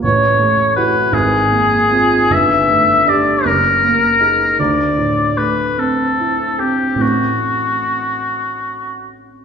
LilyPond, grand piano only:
\new Staff \with { instrumentName = "Grand piano" } { \time 6/8 \key a \mixolydian \tempo 4. = 50 a,,8 a8 <e' fis'>8 gis,,8 ais8 <bis eis'>8 | g,,8 a8 <d' g'>8 fis,,8 ais8 <dis' gis'>8 | d,8 a,8 a8 c'8 e'8 c'8 | <a,, a c' e'>2. | }